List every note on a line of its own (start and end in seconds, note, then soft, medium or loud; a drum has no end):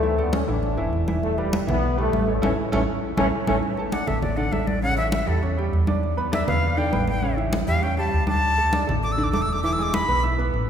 0.00 0.42 D2 medium
0.00 0.15 E3 medium
0.00 0.16 A3 loud
0.00 0.15 E4 medium
0.00 0.15 E5 medium
0.00 high conga soft
0.18 0.42 A3 medium
0.18 0.34 B3 medium
0.18 0.43 A4 medium
0.18 0.43 D5 medium
0.18 high conga soft
0.33 0.40 C#4 medium
0.33 high conga medium
0.48 0.76 A1 medium
0.48 0.72 E3 medium
0.48 0.90 D4 medium
0.48 0.72 E4 medium
0.48 0.73 E5 medium
0.48 high conga soft
0.63 high conga soft
0.77 0.92 F#1 medium
0.77 1.02 E3 medium
0.77 1.02 E4 medium
0.77 1.02 E5 medium
0.77 high conga soft
0.93 1.62 E1 medium
0.93 high conga soft
1.08 1.32 E3 medium
1.08 1.32 E4 medium
1.08 1.33 E5 medium
1.08 high conga medium
1.23 1.37 A3 loud
1.23 high conga soft
1.38 1.62 G3 medium
1.38 1.68 G3 medium
1.38 1.62 G4 medium
1.38 1.63 B4 medium
1.38 high conga soft
1.53 high conga medium
1.67 2.09 B1 medium
1.67 1.92 E3 medium
1.67 1.96 B3 loud
1.67 1.92 E4 medium
1.67 1.92 E5 medium
1.67 high conga soft
1.67 low conga medium
1.83 high conga soft
1.97 2.22 G3 medium
1.97 2.26 A3 loud
1.97 2.22 G4 medium
1.97 2.22 B4 medium
1.97 high conga soft
2.13 2.41 A1 medium
2.13 high conga medium
2.28 2.40 A3 medium
2.28 2.42 A3 medium
2.28 2.40 A4 medium
2.28 2.40 C#5 medium
2.42 2.54 A1 medium
2.42 2.50 E3 loud
2.42 2.50 A3 medium
2.42 2.52 C#4 loud
2.42 2.50 C#4 loud
2.42 2.52 E4 loud
2.42 2.52 A4 loud
2.42 high conga loud
2.72 2.84 A1 loud
2.72 2.80 E3 medium
2.72 2.80 A3 medium
2.72 2.82 C#4 loud
2.72 2.80 C#4 medium
2.72 2.82 E4 loud
2.72 2.82 A4 loud
2.72 high conga loud
3.17 3.29 A1 loud
3.17 3.25 E3 loud
3.17 3.25 A3 loud
3.17 3.27 C#4 medium
3.17 3.25 C#4 loud
3.17 3.27 E4 loud
3.17 3.27 A4 medium
3.17 high conga loud
3.47 3.59 A1 loud
3.47 3.55 E3 medium
3.47 3.55 A3 loud
3.47 3.54 C#4 loud
3.47 3.57 C#4 loud
3.47 3.57 E4 loud
3.47 3.57 A4 medium
3.47 high conga loud
3.63 high conga soft
3.77 3.90 A3 medium
3.77 3.90 A4 medium
3.77 3.91 A5 medium
3.77 high conga soft
3.92 4.05 D4 medium
3.92 4.05 D5 medium
3.92 4.09 F#5 medium
3.92 4.05 D6 medium
3.92 high conga medium
4.07 4.50 A1 medium
4.07 4.32 A3 medium
4.07 4.32 A4 medium
4.07 4.21 E5 medium
4.07 4.32 A5 medium
4.07 high conga soft
4.07 low conga medium
4.22 4.38 D5 medium
4.22 high conga soft
4.22 low conga medium
4.37 4.50 D3 medium
4.37 4.50 D4 medium
4.37 4.50 D5 medium
4.37 4.54 F#5 medium
4.37 high conga soft
4.52 5.22 A1 medium
4.52 4.77 A3 medium
4.52 4.78 A4 medium
4.52 4.69 E5 medium
4.52 4.78 A5 medium
4.52 high conga medium
4.67 4.82 D5 medium
4.67 high conga medium
4.82 4.95 C#3 medium
4.82 4.95 C#4 medium
4.82 4.95 C#5 medium
4.82 4.97 F#5 loud
4.82 high conga soft
4.97 5.22 E3 medium
4.97 5.22 E4 medium
4.97 5.11 E5 medium
4.97 5.23 E5 medium
4.97 high conga soft
5.12 5.29 E5 medium
5.12 high conga medium
5.27 5.69 E2 loud
5.27 5.39 G3 medium
5.27 5.40 G4 medium
5.27 5.42 A4 medium
5.27 5.40 G5 medium
5.27 high conga soft
5.42 5.55 C#4 medium
5.42 5.55 C#5 medium
5.42 5.55 C#6 medium
5.42 high conga soft
5.57 5.82 G3 medium
5.57 5.82 G4 medium
5.57 5.83 G5 medium
5.57 high conga soft
5.73 6.43 E2 medium
5.73 high conga soft
5.87 6.12 D4 medium
5.87 6.12 D5 medium
5.87 6.13 D6 medium
5.87 high conga medium
6.03 high conga soft
6.17 6.30 B3 medium
6.17 6.30 B4 medium
6.17 6.30 B5 medium
6.17 high conga soft
6.32 6.45 D4 medium
6.32 6.45 D5 medium
6.32 6.47 E5 loud
6.32 6.45 D6 medium
6.32 high conga medium
6.47 6.90 E2 medium
6.47 6.72 B3 medium
6.47 6.72 B4 medium
6.47 6.80 F5 medium
6.47 6.72 B5 medium
6.47 high conga soft
6.47 low conga medium
6.63 high conga soft
6.77 6.90 D3 medium
6.77 6.90 D4 medium
6.77 6.90 D5 medium
6.77 7.07 G5 medium
6.77 high conga soft
6.92 7.63 A1 medium
6.92 7.17 B3 medium
6.92 7.17 B4 medium
6.92 7.17 B5 medium
6.92 high conga medium
7.08 7.37 G5 medium
7.08 high conga medium
7.22 7.35 C#3 medium
7.22 7.35 C#4 medium
7.22 7.35 C#5 medium
7.22 high conga soft
7.37 7.62 E3 medium
7.37 7.62 E4 medium
7.37 7.62 E5 medium
7.37 high conga soft
7.53 high conga loud
7.67 8.10 E2 medium
7.67 7.80 G3 medium
7.67 7.80 G4 medium
7.67 7.85 F5 loud
7.67 7.80 G5 medium
7.67 high conga soft
7.82 7.95 C#4 medium
7.82 7.95 C#5 medium
7.82 7.98 G5 medium
7.82 7.95 C#6 medium
7.82 high conga soft
7.97 8.22 G3 medium
7.97 8.23 G4 medium
7.97 8.23 G5 medium
7.97 8.27 A5 medium
7.97 high conga soft
8.12 8.83 D2 medium
8.12 high conga soft
8.27 8.52 D4 medium
8.27 8.53 D5 medium
8.27 8.86 A5 loud
8.27 8.52 D6 medium
8.27 high conga medium
8.42 high conga soft
8.58 8.70 A3 medium
8.58 8.71 A4 medium
8.58 8.71 A5 medium
8.58 high conga soft
8.73 8.85 D4 medium
8.73 8.85 D5 medium
8.73 8.86 D6 medium
8.73 high conga medium
8.87 9.30 A1 medium
8.87 9.12 A3 medium
8.87 9.12 A4 medium
8.87 9.12 A5 medium
8.87 high conga soft
8.87 low conga medium
9.03 9.14 D6 medium
9.03 high conga soft
9.12 9.25 E6 medium
9.18 9.30 D3 medium
9.18 9.30 D4 medium
9.18 9.31 D5 medium
9.18 high conga soft
9.24 9.32 D6 medium
9.32 10.03 E1 loud
9.32 9.58 A3 medium
9.32 9.58 A4 medium
9.32 9.58 A5 medium
9.32 9.44 D6 medium
9.32 high conga medium
9.42 9.54 E6 medium
9.53 9.63 D6 medium
9.63 9.76 E3 medium
9.63 9.76 E4 medium
9.63 9.76 E5 medium
9.63 9.74 D6 loud
9.63 high conga soft
9.73 9.84 E6 medium
9.78 10.03 G#3 medium
9.78 10.03 G#4 medium
9.78 10.03 G#5 medium
9.78 high conga soft
9.83 9.96 D6 loud
9.94 10.23 B5 loud
9.94 high conga medium
10.08 10.50 B1 loud
10.08 10.21 B3 medium
10.08 10.21 B4 medium
10.08 10.21 B5 medium
10.08 high conga soft
10.23 10.36 E4 medium
10.23 10.36 E5 medium
10.23 10.36 E6 medium
10.23 high conga soft
10.38 10.63 B3 medium
10.38 10.63 B4 medium
10.38 10.63 B5 medium
10.38 high conga soft
10.54 10.70 A1 loud
10.54 high conga soft